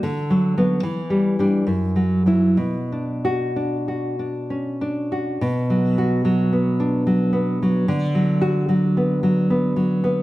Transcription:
\new Staff \with { instrumentName = "Nylon-string guitar" } { \clef bass \time 3/4 \key b \minor \tempo 4 = 73 << { \tuplet 3/2 { r4 b8 r4 d'8 r4 e'8 } | \tuplet 3/2 { r4 fis'8 } r2 | \tuplet 3/2 { r4 fis'8 } r2 | \tuplet 3/2 { r4 fis'8 } r2 | } \\ { \tuplet 3/2 { d8 fis8 fis8 e8 g8 g8 fis,8 fis8 fis8 } | \tuplet 3/2 { b,8 d'4 d'8 fis'8 d'8 cis'8 d'8 fis'8 } | \tuplet 3/2 { b,8 fis4 fis8 b8 d'8 fis8 b8 fis8 } | \tuplet 3/2 { d8 fis4 fis8 b8 fis8 b8 fis8 b8 } | } >> }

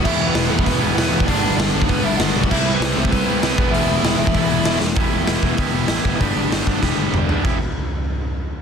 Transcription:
<<
  \new Staff \with { instrumentName = "Lead electric guitar" } { \time 4/4 \key e \minor \tempo 4 = 195 <e' e''>8. <b b'>8. <a a'>8 <b b'>4 <b b'>4 | <d' d''>4 <d' d''>4 <b b'>8 <e' e''>8 <fis' fis''>4 | <e' e''>8. <b b'>8. <a a'>8 <b b'>4 <b b'>4 | <e' e''>2.~ <e' e''>8 r8 |
r1 | r1 | r1 | }
  \new Staff \with { instrumentName = "Overdriven electric guitar" } { \time 4/4 \key e \minor <e g b e'>2~ <e g b e'>8 <e g b e'>8 <e g b e'>4 | <g, d g b d'>2~ <g, d g b d'>8 <g, d g b d'>8 <g, d g b d'>4 | <c g c' e'>2~ <c g c' e'>8 <c g c' e'>8 <c g c' e'>8 <e g b e'>8~ | <e g b e'>2 <e g b e'>8 <e g b e'>4 r8 |
<e b e' g'>2 <e b e' g'>2 | <g b d' g'>2 <g b d' g'>2 | <e b e' g'>8 r2. r8 | }
  \new Staff \with { instrumentName = "Overdriven electric guitar" } { \clef bass \time 4/4 \key e \minor <e, b, e>4. <e, b, e>2~ <e, b, e>8 | <g, d g>4. <g, d g>2~ <g, d g>8 | <c g c'>4. <c g c'>2 <e, b, e>8~ | <e, b, e>4 <e, b, e>2~ <e, b, e>8 r8 |
r1 | r1 | r1 | }
  \new Staff \with { instrumentName = "Distorted electric guitar" } { \clef bass \time 4/4 \key e \minor <e, b, e>2.~ <e, b, e>8 <e, b, e>8 | <g, d g>2.~ <g, d g>8 <g, d g>8 | <c g c'>2.~ <c g c'>8 <e, b, e>8~ | <e, b, e>2. <e, b, e>8 r8 |
<e, b, e>2.~ <e, b, e>8 <e, b, e>8 | <g, d g>2.~ <g, d g>8 <g, d g>8 | <e, b, e>8 r2. r8 | }
  \new Staff \with { instrumentName = "Picked electric bass" } { \clef bass \time 4/4 \key e \minor e,,4 e,,8 e,,8 e,,8 e,,8 e,,8 e,,8 | g,,4 g,,8 g,,8 g,,8 g,,8 g,,8 b,,8 | c,4 c,8 c,8 c,8 c,8 c,8 e,,8 | e,,4 e,,8 e,,8 e,,8 e,,8 e,,8 e,,8 |
e,,8 e,,8 e,,8 e,,8 d,8 e,,8 a,,8 fis,,8 | g,,8 g,,8 g,,8 g,,8 e,,8 g,,8 g,,8 e,8 | e,,8 r2. r8 | }
  \new DrumStaff \with { instrumentName = "Drums" } \drummode { \time 4/4 <cymc bd>4 <hho sn>8. bd16 <hho bd>4 <hho sn>8. bd16 | <hho bd>4 <hho sn>8. bd16 <hho bd>4 <hho sn>8. bd16 | <cymc bd>4 <hho sn>8. bd16 <hho bd>4 <hho sn>8 bd8 | hho4 <hho sn>8. bd16 <hho bd>4 <hho sn>8 sn8 |
<hho bd>4 <hho sn>8 bd8 <hho bd>4 <hho sn>8 bd8 | <hho bd>4 <hho sn>8 bd8 <bd sn>4 toml8 tomfh8 | <cymc bd>4 r4 r4 r4 | }
>>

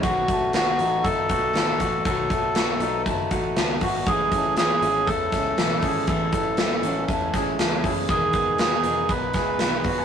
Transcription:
<<
  \new Staff \with { instrumentName = "Melodica" } { \time 4/4 \key b \mixolydian \tempo 4 = 119 fis'4 fis'4 a'2 | a'2 r4. fis'8 | gis'4 gis'4 a'2 | a'2 r4. e'8 |
gis'4 gis'4 b'2 | }
  \new Staff \with { instrumentName = "Clean electric guitar" } { \time 4/4 \key b \mixolydian <fis fis'>8 a8 fis'8 dis'8 a8 fis'8 a8 fis'8 | <fis fis'>8 a8 fis'8 dis'8 a8 fis'8 a8 fis'8 | <e gis'>8 a8 gis'8 cis'8 a4 a8 gis'8 | e8 a4 cis'8 a8 gis'8 a8 gis'8 |
<dis gis'>8 b8 fis'16 gis'16 dis'8 b8 gis'8 b8 fis'16 gis'16 | }
  \new Staff \with { instrumentName = "Steel-string acoustic guitar" } { \time 4/4 \key b \mixolydian <b, dis a b fis'>8 <a b fis'>8 <b, dis a b fis'>8 <a b fis'>8 <dis a b fis'>8 <a b fis'>8 <b, dis a b fis'>8 <a b fis'>8 | <b, dis a b fis'>8 <a b fis'>8 <b, dis a b fis'>8 <a b fis'>8 <dis a b fis'>8 <a b fis'>8 <b, dis a b fis'>8 <a b fis'>8 | <a, e gis cis' e'>8 <gis cis' e'>8 <a, e gis cis' e'>8 <gis cis' e'>8 <e gis cis' e'>8 <gis cis' e'>8 <a, e gis cis' e'>8 <gis cis' e'>8 | <a, e gis cis' e'>8 <gis cis' e'>8 <a, e gis cis' e'>8 <gis cis' e'>8 <e gis cis' e'>8 <gis cis' e'>8 <a, e gis cis' e'>8 <gis cis' e'>8 |
<e, b, dis gis b gis'>8 <dis gis b gis'>8 <e, b, dis gis b gis'>8 <dis gis b gis'>8 <dis gis b gis'>8 <dis gis b gis'>8 <e, b, dis gis b gis'>8 <dis gis b gis'>8 | }
  \new Staff \with { instrumentName = "Picked electric bass" } { \clef bass \time 4/4 \key b \mixolydian b,,4. a,,8 fis,,8 b,,8 a,,8 a,,8 | b,,4. b,,8 fis,,8 a,,8 cis,8 gis,,8 | a,,4. gis,,8 e,8 cis,8 b,,8 gis,,8 | a,,4. a,,8 e,8 a,,8 cis,8 fis,,8 |
e,,4. e,,8 b,,8 cis,8 b,,8 fis,,8 | }
  \new DrumStaff \with { instrumentName = "Drums" } \drummode { \time 4/4 <hh bd>8 <hh bd>8 <hh sn>8 hh8 <hh bd>8 <hh bd>8 <hh sn>8 <hh bd>8 | <hh bd>8 <hh bd>8 <hh sn>8 hh8 <hh bd>8 <hh bd>8 <hh sn>8 <hho bd>8 | <hh bd>8 <hh bd>8 <hh sn>8 hh8 <hh bd>8 <hh bd sn>8 <hh sn>8 <hho bd>8 | <hh bd>8 <hh bd>8 <hh sn>8 hh8 <hh bd>8 <hh bd sn>8 <hh sn>8 <hho bd>8 |
<hh bd>8 <hh bd>8 <hh sn>8 hh8 <hh bd>8 <hh bd sn>8 <hh sn>8 <hho bd>8 | }
>>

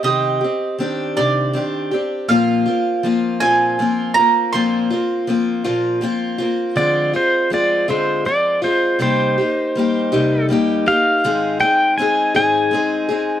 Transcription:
<<
  \new Staff \with { instrumentName = "Mandolin" } { \time 6/8 \key c \minor \tempo 4. = 54 ees''4 r8 d''4 r8 | f''4. aes''4 bes''8 | c'''2 r4 | r2. |
r2. | r2. | }
  \new Staff \with { instrumentName = "Pedal steel guitar" } { \time 6/8 \key c \minor r2. | r2. | r2. | d''8 c''8 d''8 c''8 d''8 c''8 |
c''2 r8 f''8~ | f''8 g''8 aes''8 aes''4. | }
  \new Staff \with { instrumentName = "Steel-string acoustic guitar" } { \time 6/8 \key c \minor <c ees c' g'>8 <c' g'>8 <ees c' d' g'>8 <c ees c' d' g'>8 <ees c' d' g'>8 <c' d' g'>8 | <bes, f bes c' f'>8 <bes c' f'>8 <f bes c' f'>8 <bes, f bes c' f'>8 <f bes c' f'>8 <bes c' f'>8 | <bes, f bes c' f'>8 <bes c' f'>8 <f bes c' f'>8 <bes, f bes c' f'>8 <f bes c' f'>8 <bes c' f'>8 | <d f aes c' f'>8 <aes c' f'>8 <f aes c' f'>8 <d f aes c' f'>8 <f aes c' f'>8 <aes c' f'>8 |
<c g bes ees' g'>8 <bes ees' g'>8 <g bes ees' g'>8 <c g bes ees' g'>8 <g bes ees' g'>8 <bes ees' g'>8 | <aes, ees aes c' ees' aes'>8 <aes c' ees' aes'>8 <aes c' ees' aes'>8 <aes, ees aes c' ees' aes'>8 <aes c' ees' aes'>8 <aes c' ees' aes'>8 | }
>>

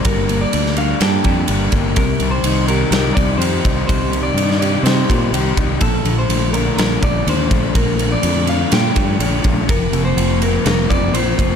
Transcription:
<<
  \new Staff \with { instrumentName = "Clean electric guitar" } { \time 4/4 \key bes \major \tempo 4 = 124 bes'8. d''8. f''8 g''4. r8 | bes'8. c''8. bes'8 bes'8 d''8 c''4 | c''8. d''8. d''8 c''4. r8 | a'8. c''8. bes'8 bes'8 d''8 c''4 |
bes'8. d''8. f''8 g''4. r8 | bes'8. c''8. bes'8 bes'8 d''8 c''8 c''8 | }
  \new Staff \with { instrumentName = "Overdriven electric guitar" } { \time 4/4 \key bes \major <g bes d'>8 bes8 bes8 d'8 bes8 g8 d'8 bes8 | c8 g8 ees'8 g'8 ees'8 c'8 g'8 ees'8 | c8 g8 ees'8 g'8 ees'8 c'8 g'8 ees'8 | bes,8 f8 a8 d'8 a8 f8 d'8 a8 |
bes,8 f8 a8 d'8 a8 f8 d'8 a8 | f8 bes8 bes8 c'8 bes8 f8 c'8 bes8 | }
  \new Staff \with { instrumentName = "Overdriven electric guitar" } { \clef bass \time 4/4 \key bes \major <g bes d' a'>8 bes8 g8 bes8 a'8 d'8 g8 bes8 | c8 ees8 ees8 g8 g'4 ees8 g8 | c8 ees8 ees8 g8 g'4 ees8 g8 | bes,8 d8 d8 a8 f'8 d'8 d8 a8 |
bes,8 d8 d8 a8 f'8 d'8 d8 a8 | f,8 c8 f8 bes8 f'8 c'8 f8 bes8 | }
  \new Staff \with { instrumentName = "Fingered electric bass" } { \clef bass \time 4/4 \key bes \major g,,4 d,4 g,8 f,8 g,,8 g,,8 | c,8 c,8 c,4 c,8 c,8 f,8 c,8 | c,4 g,4 c8 bes,8 c,8 c,8 | bes,,8 bes,,8 bes,,4 bes,,8 bes,,8 ees,8 bes,,8 |
bes,,4 f,4 bes,8 g,8 bes,,8 bes,,8 | f,,8 f,,8 f,,4 f,,8 f,,8 bes,,8 f,,8 | }
  \new DrumStaff \with { instrumentName = "Drums" } \drummode { \time 4/4 <bd cymr>8 cymr8 cymr16 sn16 cymr8 <cymr sn>8 <bd cymr>8 cymr8 <bd cymr>8 | <bd cymr>8 cymr8 cymr8 cymr8 <cymr sn>8 <bd cymr>8 cymr8 <bd cymr>8 | <bd cymr>8 cymr8 cymr16 sn16 cymr8 <cymr sn>8 <bd cymr>8 cymr8 <bd cymr>8 | <bd cymr>8 cymr8 cymr8 cymr8 <cymr sn>8 <bd cymr>8 cymr8 <bd cymr>8 |
<bd cymr>8 cymr8 cymr8 cymr8 <cymr sn>8 <bd cymr>8 cymr8 <bd cymr>8 | <bd cymr>8 cymr8 cymr8 cymr8 <cymr sn>8 <bd cymr>8 cymr8 <bd cymr>8 | }
>>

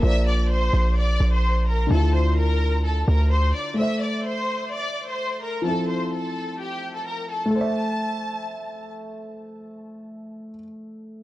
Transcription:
<<
  \new Staff \with { instrumentName = "Violin section" } { \time 4/4 \key a \phrygian \tempo 4 = 128 <e'' e'''>8 <d'' d'''>8 <c'' c'''>4 <d'' d'''>8. <c'' c'''>8. <bes' bes''>8 | <a' a''>8 <c'' c'''>8 <bes' bes''>4 <a' a''>8 <bes' bes''>8 <c'' c'''>8 <d'' d'''>8 | <e'' e'''>8 <d'' d'''>8 <c'' c'''>4 <d'' d'''>8. <c'' c'''>8. <bes' bes''>8 | <a' a''>8 <c'' c'''>8 <a' a''>4 <g' g''>8. <a' a''>16 <bes' bes''>8 <a' a''>8 |
a''2. r4 | r1 | }
  \new Staff \with { instrumentName = "Grand piano" } { \time 4/4 \key a \phrygian <bes f' c'' d''>1 | <d d' e' f'>1 | <a a' c'' e''>1 | <f c' e' a'>1 |
<a a' c'' e''>1~ | <a a' c'' e''>1 | }
  \new Staff \with { instrumentName = "808-style bass" } { \clef bass \time 4/4 \key a \phrygian bes,,4. bes,,4 bes,,4. | d,2~ d,8 d,4 r8 | r1 | r1 |
r1 | r1 | }
>>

